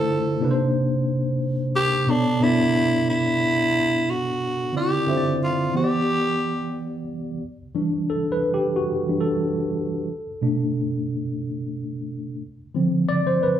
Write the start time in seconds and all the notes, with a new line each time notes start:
Already playing: D3 A3 E4 F4 A4 C5
0.40 C3 A#3 D4 D#4 B4
0.51 C5
1.76 G4
2.07 B2 B3 D4 A4
2.11 C#5
2.40 B2 B3 D4 E4 A4
2.44 D5
3.10 E4
4.10 F#4
4.73 D3 C4 E4 F4 D5
4.77 G4
5.07 D3 C4 F4 E5
5.11 C5
5.17 D5
5.44 F4
5.73 E3 B3 G4 F#5
5.77 C5
5.84 D5
7.74 E3 G3 D4
8.10 A4
8.32 B4
8.54 G4
8.76 F#4
9.08 E3 G3 D4
9.20 A4
10.42 B2 A3 D4
12.75 D3 F3 C4
13.09 D5
13.27 C5
13.43 B4